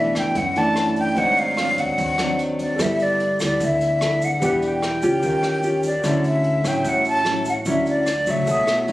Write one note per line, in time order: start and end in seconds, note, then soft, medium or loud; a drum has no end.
0.00 0.11 B1 medium
0.00 0.33 B2 soft
0.00 0.35 E3 medium
0.00 0.35 A3 medium
0.00 0.35 D4 medium
0.00 0.72 A4 medium
0.00 0.73 C#5 soft
0.00 0.74 D5 soft
0.00 0.14 E5 medium
0.00 0.75 E5 medium
0.15 0.34 F#2 medium
0.15 0.39 G5 medium
0.15 kick soft
0.15 cross-stick soft
0.15 closed hi-hat soft
0.35 1.13 F#2 medium
0.35 1.15 F#2 soft
0.35 0.59 F#5 medium
0.35 kick medium
0.35 closed hi-hat soft
0.56 1.14 E3 medium
0.56 1.14 A3 medium
0.56 1.14 D4 medium
0.56 0.97 A5 medium
0.56 closed hi-hat soft
0.74 1.16 A4 soft
0.74 1.16 C#5 soft
0.74 1.16 D5 soft
0.74 1.17 F#5 soft
0.74 cross-stick medium
0.74 closed hi-hat soft
0.96 1.19 G5 medium
0.96 kick soft
0.96 closed hi-hat soft
1.14 1.74 G#1 medium
1.14 1.96 G#2 soft
1.14 1.54 F#3 soft
1.14 1.55 C4 soft
1.14 2.74 F#4 soft
1.14 2.75 C5 soft
1.14 2.76 D5 soft
1.14 kick medium
1.14 closed hi-hat soft
1.18 1.55 D4 medium
1.18 2.77 D#4 medium
1.18 1.40 F#5 medium
1.37 1.81 F5 medium
1.37 closed hi-hat soft
1.57 2.15 F#3 soft
1.57 2.15 C4 medium
1.57 2.16 D4 medium
1.57 cross-stick medium
1.57 closed hi-hat soft
1.77 1.97 D#2 medium
1.77 2.39 F#5 medium
1.77 kick soft
1.77 closed hi-hat soft
1.98 2.75 D#2 medium
1.98 2.77 D#3 soft
1.98 kick medium
1.98 closed hi-hat soft
2.18 2.76 F#3 medium
2.18 2.76 C4 medium
2.18 2.77 D4 medium
2.18 cross-stick medium
2.18 closed hi-hat soft
2.39 closed hi-hat soft
2.59 2.83 D5 medium
2.59 kick soft
2.59 closed hi-hat soft
2.76 3.36 G1 medium
2.76 3.58 G3 soft
2.76 3.19 B3 medium
2.76 3.20 E4 soft
2.76 4.37 A4 soft
2.76 3.20 A4 soft
2.76 4.38 B4 soft
2.76 4.39 D5 soft
2.76 kick soft
2.76 cross-stick soft
2.76 closed hi-hat soft
2.76 shaker medium
2.82 3.04 E5 medium
2.82 4.40 E5 medium
2.99 3.42 D5 medium
2.99 closed hi-hat soft
2.99 shaker soft
3.20 closed hi-hat soft
3.40 3.59 D2 medium
3.40 3.98 B3 medium
3.40 3.98 E4 medium
3.40 3.98 A4 medium
3.40 3.66 D5 medium
3.40 kick soft
3.40 cross-stick medium
3.40 closed hi-hat soft
3.40 shaker medium
3.60 4.38 D2 medium
3.60 4.40 D3 soft
3.60 kick soft
3.60 closed hi-hat soft
3.60 shaker medium
3.64 4.26 E5 medium
3.81 closed hi-hat soft
3.81 shaker soft
4.01 4.28 B3 soft
4.01 4.28 E4 soft
4.01 4.28 A4 medium
4.01 cross-stick medium
4.01 closed hi-hat soft
4.21 4.63 F#5 medium
4.21 kick soft
4.21 closed hi-hat soft
4.21 shaker medium
4.39 4.99 E1 medium
4.39 5.21 E3 medium
4.39 4.82 B3 soft
4.39 4.82 D4 soft
4.39 5.18 G4 soft
4.39 4.83 G4 medium
4.39 5.21 B4 soft
4.39 5.22 D5 soft
4.39 kick medium
4.39 closed hi-hat soft
4.39 shaker medium
4.45 5.23 F#6 medium
4.62 5.82 G5 medium
4.62 closed hi-hat soft
4.62 shaker soft
4.83 cross-stick medium
4.83 closed hi-hat soft
5.02 5.22 C#2 medium
5.02 5.60 C#4 medium
5.02 5.61 F4 medium
5.02 5.61 G4 medium
5.02 kick soft
5.02 closed hi-hat soft
5.02 shaker medium
5.20 6.00 D#2 medium
5.20 6.02 D#3 soft
5.20 6.01 G4 medium
5.20 6.02 A#4 medium
5.20 kick medium
5.20 closed hi-hat soft
5.20 shaker medium
5.24 6.03 C#5 soft
5.24 6.04 F5 medium
5.43 cross-stick medium
5.43 closed hi-hat soft
5.43 shaker soft
5.63 5.89 C#4 medium
5.63 5.90 F4 soft
5.63 5.90 G4 medium
5.63 closed hi-hat soft
5.63 shaker medium
5.83 6.23 D5 medium
5.83 kick soft
5.83 closed hi-hat soft
5.83 shaker medium
6.01 6.61 D2 medium
6.01 6.83 D3 medium
6.01 6.62 F#3 soft
6.01 6.62 C#4 medium
6.01 6.62 E4 medium
6.01 8.42 F#4 soft
6.01 8.44 A4 soft
6.01 kick soft
6.01 cross-stick soft
6.01 closed hi-hat soft
6.01 shaker medium
6.06 8.45 E5 medium
6.06 8.45 C#6 soft
6.24 6.69 E5 medium
6.24 closed hi-hat soft
6.24 shaker soft
6.44 closed hi-hat soft
6.64 6.84 A1 medium
6.64 7.22 F#3 medium
6.64 7.22 C#4 medium
6.64 7.22 E4 medium
6.64 6.90 G5 medium
6.64 kick soft
6.64 cross-stick soft
6.64 closed hi-hat soft
6.64 shaker medium
6.84 7.62 A1 medium
6.84 7.64 A2 soft
6.84 kick medium
6.84 closed hi-hat medium
6.84 shaker medium
6.88 7.07 F#5 medium
7.05 7.45 A5 medium
7.05 closed hi-hat soft
7.05 shaker soft
7.25 7.52 F#3 medium
7.25 7.52 C#4 medium
7.25 7.52 E4 medium
7.25 cross-stick medium
7.25 closed hi-hat soft
7.45 7.55 F#5 medium
7.45 kick soft
7.45 closed hi-hat soft
7.45 shaker medium
7.65 8.23 D2 medium
7.65 8.45 D3 soft
7.65 8.06 F#3 medium
7.65 8.06 C#4 medium
7.65 8.07 E4 medium
7.65 kick soft
7.65 closed hi-hat soft
7.65 shaker medium
7.69 7.87 E5 medium
7.86 8.32 D5 medium
7.86 closed hi-hat soft
7.86 shaker soft
8.06 cross-stick soft
8.06 closed hi-hat soft
8.06 shaker medium
8.26 8.46 C#2 medium
8.26 8.85 F#3 medium
8.26 8.85 A3 medium
8.26 8.90 E5 medium
8.26 kick soft
8.26 closed hi-hat soft
8.26 shaker medium
8.45 8.92 B1 medium
8.45 8.92 B2 soft
8.45 8.92 F#4 soft
8.45 8.92 A4 soft
8.45 8.92 C#5 soft
8.45 kick soft
8.45 closed hi-hat medium
8.45 shaker medium
8.51 8.92 D#6 medium
8.67 cross-stick medium
8.67 closed hi-hat soft
8.67 shaker soft
8.88 8.92 F#3 soft
8.88 8.92 A3 soft
8.88 8.92 D#4 soft
8.88 closed hi-hat soft